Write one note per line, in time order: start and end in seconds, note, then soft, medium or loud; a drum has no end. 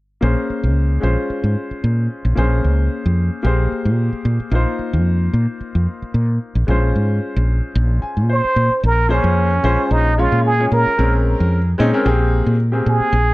0.21 0.34 A#1 medium
0.21 1.02 A#3 medium
0.21 1.00 C#4 soft
0.21 1.03 G#4 soft
0.21 1.02 C5 medium
0.50 muted fretless electric bass stroke soft
0.63 0.98 C#2 medium
1.00 1.15 A#1 medium
1.00 2.34 G#3 medium
1.00 2.34 C#4 medium
1.00 2.35 F4 medium
1.00 2.35 C5 medium
1.30 muted fretless electric bass stroke soft
1.44 1.55 G#2 medium
1.71 muted fretless electric bass stroke soft
1.84 2.07 A#2 medium
2.25 2.36 A#1 medium
2.35 2.61 A#1 medium
2.35 3.41 A#3 medium
2.35 3.43 C#4 soft
2.35 3.43 G#4 medium
2.35 3.44 C5 medium
2.64 2.88 C#2 medium
3.06 3.29 F2 medium
3.43 3.68 A#1 medium
3.43 4.50 A#3 medium
3.43 4.50 G4 medium
3.43 4.51 G#4 soft
3.43 4.51 C5 medium
3.72 muted fretless electric bass stroke soft
3.85 4.09 A#2 medium
4.13 muted fretless electric bass stroke soft
4.25 4.38 A#2 medium
4.40 muted fretless electric bass stroke soft
4.51 4.64 A#1 medium
4.51 6.64 A#3 medium
4.51 6.64 D#4 medium
4.51 6.65 F4 medium
4.51 6.66 C5 medium
4.79 muted fretless electric bass stroke soft
4.93 5.28 F2 medium
5.33 5.46 A#2 medium
5.61 muted fretless electric bass stroke soft
5.75 5.86 F2 medium
6.02 muted fretless electric bass stroke soft
6.14 6.38 A#2 medium
6.55 6.67 A#1 medium
6.67 6.91 A#1 medium
6.67 8.79 G#3 medium
6.67 8.80 C#4 medium
6.67 8.80 F4 medium
6.67 8.28 C5 medium
6.96 7.19 G#2 medium
7.36 7.60 A#1 medium
7.75 7.99 A#1 medium
8.02 8.28 G#5 medium
8.02 muted fretless electric bass stroke soft
8.17 8.40 A#2 medium
8.29 8.80 C5 medium
8.29 8.82 C5 medium
8.44 muted fretless electric bass stroke soft
8.56 8.69 A#2 medium
8.70 muted fretless electric bass stroke soft
8.83 9.19 A#1 medium
8.83 9.14 A#4 medium
9.09 9.49 A#3 medium
9.09 9.49 C#4 medium
9.09 9.93 C#4 medium
9.09 9.50 G#4 medium
9.09 9.50 C5 medium
9.24 9.58 F2 medium
9.63 9.76 A#1 medium
9.63 10.07 G#3 medium
9.63 10.07 C#4 medium
9.63 10.08 F4 medium
9.63 10.08 C5 medium
9.91 10.26 A#1 medium
9.91 10.21 D#4 medium
10.18 10.47 G#3 medium
10.18 10.47 C#4 medium
10.18 10.48 F4 medium
10.18 10.46 F4 medium
10.18 10.48 C#5 medium
10.32 10.66 A#2 medium
10.46 10.71 G#4 medium
10.59 10.88 G#3 medium
10.59 10.88 C#4 soft
10.59 10.88 F4 medium
10.59 10.89 C#5 medium
10.72 10.84 A#2 medium
10.72 11.22 A#4 medium
10.87 muted fretless electric bass stroke soft
10.98 11.34 A#1 medium
10.98 11.57 G#3 medium
10.98 11.57 C4 medium
10.98 11.57 C#4 medium
10.98 11.57 A#4 medium
11.40 11.74 F2 medium
11.78 11.91 A#2 medium
11.78 11.89 G#3 medium
11.78 11.89 C4 medium
11.78 11.89 C#4 medium
11.78 11.90 D#4 loud
11.92 12.02 G#3 medium
11.92 12.02 C4 medium
11.92 12.03 C#4 medium
11.92 12.03 A#4 medium
12.05 12.41 A#1 medium
12.05 12.54 A#3 medium
12.05 12.55 C4 medium
12.05 12.54 G4 medium
12.05 12.55 G#4 medium
12.46 12.80 A#2 medium
12.72 13.12 A#3 medium
12.72 13.13 C4 medium
12.72 13.12 G4 medium
12.72 13.13 G#4 medium
12.86 12.98 A#2 medium
12.86 13.34 G#4 medium
13.00 muted fretless electric bass stroke soft
13.13 13.34 A#1 medium